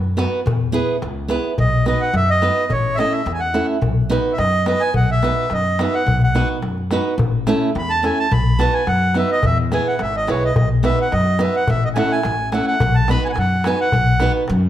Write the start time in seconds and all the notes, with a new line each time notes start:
Already playing: F#2
0.04 darbuka tek
0.17 B3 D#4 F#4 B4, darbuka tek
0.46 E2, darbuka dum
0.61 darbuka tek
0.72 B3 E4 G#4 B4
1.02 C#2, darbuka tek
1.28 B3 E4 G#4 B4, darbuka tek
1.44 darbuka tek
1.58 B1 D#5, darbuka dum
1.86 B3 D#4 F#4 B4 D#5, darbuka tek
2.01 F#5
2.13 F#2 E5, darbuka tek
2.29 D#5, darbuka tek
2.42 B3 D#4 F#4 B4, darbuka tek
2.70 A1 C#5, darbuka dum
2.95 A3 C#4 E4 D#5 E5, darbuka tek
3.00 A4
3.12 E5
3.26 E2, darbuka tek
3.34 G#5
3.40 F#5, darbuka tek
3.54 A3 C#4 E4 A4, darbuka tek
3.82 B1, darbuka dum
4.10 B3 D#4 F#4 B4, darbuka tek
4.32 E5
4.38 F#2 D#5, darbuka tek
4.53 darbuka tek
4.66 B3 D#4 F#4 B4 D#5, darbuka tek
4.81 G#5
4.94 B1 F#5, darbuka dum
5.09 E5, darbuka tek
5.22 B3 D#4 F#4 B4, darbuka tek
5.37 darbuka tek
5.50 F#2 D#5, darbuka tek
5.65 darbuka tek
5.79 B3 D#4 F#4 B4 E5, darbuka tek
5.94 F#5, darbuka tek
6.06 B1, darbuka dum
6.23 F#5
6.35 B3 D#4 F#4 B4, darbuka tek
6.62 F#2, darbuka tek
6.78 darbuka tek
6.91 B3 D#4 F#4 B4, darbuka tek
7.18 A1, darbuka dum
7.47 A3 C#4 E4 A4, darbuka tek
7.75 E2 B5, darbuka tek
7.90 A5, darbuka tek
8.03 A3 C#4 E4 A4 G#5, darbuka tek
8.19 A5
8.31 B1 B5, darbuka dum
8.59 B3 D#4 F#4 B4 A5, darbuka tek
8.74 G#5
8.87 F#2 F#5, darbuka tek
9.02 darbuka tek
9.14 B3 D#4 F#4 B4 E5, darbuka tek
9.32 D#5
9.43 E2 E5, darbuka dum
9.72 B3 E4 G#4 B4 G#5, darbuka tek
9.86 F#5, darbuka tek
9.99 G#1 E5, darbuka tek
10.15 D#5, darbuka tek
10.27 B1 B3 E4 G#4 B4 C#5, darbuka tek
10.43 D#5, darbuka tek
10.56 B1 D#5, darbuka dum
10.83 B3 D#4 F#4 B4 E5, darbuka tek
11.01 F#5
11.12 F#2 D#5, darbuka tek
11.26 darbuka tek
11.39 B3 D#4 F#4 B4 E5, darbuka tek
11.56 F#5
11.68 A1 E5, darbuka dum
11.85 D#5
11.95 A3 C#4 E4 A4 F#5 G#5, darbuka tek
12.12 G#5
12.23 A1, darbuka tek
12.39 darbuka tek
12.51 A3 C#4 E4 A4 F#5 G#5, darbuka tek
12.67 F#5
12.80 B1, darbuka dum
12.95 A5
13.08 B3 D#4 F#4 B4 B5, darbuka tek
13.25 G#5
13.29 F#5 G#5
13.36 F#2 F#5, darbuka tek
13.50 darbuka tek
13.64 B3 D#4 F#4 B4 G#5, darbuka tek
13.81 F#5
13.92 B1, darbuka dum
14.20 B3 D#4 F#4 B4, darbuka tek
14.34 darbuka tek
14.48 F#2, darbuka tek